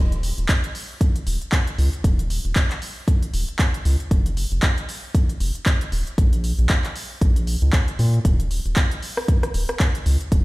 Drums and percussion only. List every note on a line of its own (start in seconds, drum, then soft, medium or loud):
0.12 closed hi-hat medium
0.23 open hi-hat loud
0.38 closed hi-hat soft
0.49 kick loud
0.49 clap loud
0.49 closed hi-hat medium
0.64 closed hi-hat medium
0.75 open hi-hat medium
1.01 kick loud
1.01 closed hi-hat medium
1.16 closed hi-hat medium
1.27 open hi-hat loud
1.42 closed hi-hat soft
1.52 kick loud
1.52 clap loud
1.52 closed hi-hat medium
1.67 closed hi-hat medium
1.78 open hi-hat medium
1.93 closed hi-hat soft
2.04 kick loud
2.04 closed hi-hat medium
2.19 closed hi-hat medium
2.30 open hi-hat loud
2.45 closed hi-hat soft
2.56 kick loud
2.56 clap loud
2.56 closed hi-hat medium
2.71 clap soft
2.71 closed hi-hat soft
2.82 open hi-hat medium
3.08 kick loud
3.08 closed hi-hat medium
3.23 closed hi-hat soft
3.34 open hi-hat loud
3.48 closed hi-hat soft
3.59 kick loud
3.59 clap loud
3.59 closed hi-hat medium
3.74 closed hi-hat medium
3.85 open hi-hat medium
4.00 closed hi-hat soft
4.11 kick loud
4.11 closed hi-hat medium
4.26 closed hi-hat soft
4.37 open hi-hat loud
4.52 closed hi-hat soft
4.62 kick loud
4.62 clap loud
4.62 closed hi-hat medium
4.78 closed hi-hat medium
4.89 open hi-hat medium
5.15 kick loud
5.15 closed hi-hat medium
5.29 closed hi-hat soft
5.40 open hi-hat loud
5.55 closed hi-hat soft
5.66 kick loud
5.66 clap loud
5.66 closed hi-hat medium
5.81 closed hi-hat medium
5.92 open hi-hat medium
6.07 closed hi-hat soft
6.18 kick loud
6.18 closed hi-hat medium
6.33 closed hi-hat soft
6.44 open hi-hat loud
6.59 closed hi-hat soft
6.69 kick loud
6.69 clap loud
6.69 closed hi-hat medium
6.84 clap soft
6.84 closed hi-hat soft
6.96 open hi-hat medium
7.21 kick loud
7.21 closed hi-hat medium
7.36 closed hi-hat soft
7.47 open hi-hat loud
7.62 closed hi-hat soft
7.73 kick loud
7.73 clap loud
7.73 closed hi-hat medium
7.88 closed hi-hat medium
7.99 open hi-hat medium
8.14 closed hi-hat soft
8.25 kick loud
8.25 closed hi-hat medium
8.40 closed hi-hat soft
8.51 open hi-hat loud
8.66 closed hi-hat soft
8.76 kick loud
8.76 clap loud
8.76 closed hi-hat medium
8.91 closed hi-hat soft
9.03 open hi-hat medium
9.17 cross-stick medium
9.28 kick loud
9.28 closed hi-hat medium
9.43 cross-stick medium
9.43 closed hi-hat soft
9.54 open hi-hat loud
9.69 cross-stick medium
9.69 closed hi-hat soft
9.80 kick loud
9.80 clap loud
9.80 closed hi-hat medium
9.95 closed hi-hat medium
10.06 open hi-hat medium
10.21 closed hi-hat soft
10.32 kick loud
10.32 closed hi-hat medium